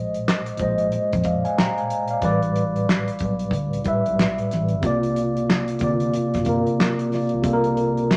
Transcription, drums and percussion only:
0.14 closed hi-hat soft
0.28 snare medium
0.28 clap medium
0.46 closed hi-hat medium
0.57 kick medium
0.57 closed hi-hat medium
0.78 closed hi-hat medium
0.92 closed hi-hat medium
1.13 kick loud
1.13 closed hi-hat medium
1.24 kick medium
1.24 closed hi-hat medium
1.45 closed hi-hat soft
1.58 snare loud
1.58 clap medium
1.78 closed hi-hat soft
1.90 closed hi-hat medium
2.08 closed hi-hat medium
2.22 kick loud
2.22 closed hi-hat medium
2.42 closed hi-hat soft
2.56 closed hi-hat medium
2.76 closed hi-hat soft
2.89 snare loud
2.89 clap medium
3.08 closed hi-hat medium
3.19 kick loud
3.19 closed hi-hat medium
3.39 closed hi-hat soft
3.51 kick medium
3.51 closed hi-hat medium
3.73 closed hi-hat medium
3.84 kick loud
3.84 closed hi-hat medium
4.06 closed hi-hat soft
4.19 snare loud
4.19 clap medium
4.38 closed hi-hat soft
4.51 snare soft
4.51 closed hi-hat medium
4.68 closed hi-hat soft
4.83 kick loud
4.83 closed hi-hat medium
5.03 closed hi-hat soft
5.16 closed hi-hat medium
5.37 closed hi-hat soft
5.50 snare loud
5.50 clap medium
5.68 closed hi-hat medium
5.79 kick loud
5.79 closed hi-hat medium
6.00 closed hi-hat soft
6.14 closed hi-hat medium
6.34 kick medium
6.34 snare soft
6.34 closed hi-hat soft
6.45 kick medium
6.45 closed hi-hat medium
6.67 closed hi-hat soft
6.80 snare loud
6.80 clap medium
6.99 closed hi-hat soft
7.12 snare soft
7.12 open hi-hat soft
7.29 closed hi-hat soft
7.44 kick loud
7.44 closed hi-hat medium
7.64 closed hi-hat soft
7.77 closed hi-hat medium
7.97 closed hi-hat soft
8.11 snare loud
8.11 clap medium

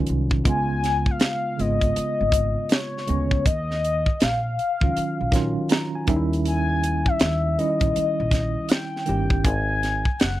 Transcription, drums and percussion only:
0.06 closed hi-hat medium
0.31 kick medium
0.45 kick loud
0.45 closed hi-hat medium
0.84 snare soft
0.84 closed hi-hat medium
1.06 kick medium
1.20 snare medium
1.20 closed hi-hat medium
1.59 closed hi-hat medium
1.81 kick medium
1.81 closed hi-hat soft
1.96 closed hi-hat medium
2.32 kick medium
2.32 closed hi-hat medium
2.69 snare loud
2.69 closed hi-hat medium
2.98 snare soft
3.08 closed hi-hat medium
3.31 kick medium
3.46 kick loud
3.46 closed hi-hat medium
3.71 snare soft
3.84 closed hi-hat medium
4.06 kick medium
4.20 snare loud
4.20 closed hi-hat medium
4.59 closed hi-hat medium
4.81 kick medium
4.97 closed hi-hat medium
5.32 kick medium
5.32 snare soft
5.32 closed hi-hat medium
5.69 snare loud
5.69 closed hi-hat medium
6.07 kick loud
6.07 closed hi-hat medium
6.33 closed hi-hat soft
6.45 closed hi-hat medium
6.83 closed hi-hat medium
7.06 kick medium
7.19 snare loud
7.19 closed hi-hat medium
7.59 closed hi-hat medium
7.81 kick medium
7.81 closed hi-hat soft
7.96 closed hi-hat medium
8.31 kick medium
8.31 snare soft
8.31 closed hi-hat medium
8.69 snare loud
8.69 closed hi-hat medium
8.96 snare soft
9.06 closed hi-hat medium
9.30 kick medium
9.45 kick loud
9.45 closed hi-hat medium
9.83 snare soft
9.83 closed hi-hat medium
10.05 kick medium
10.20 snare loud
10.20 closed hi-hat medium

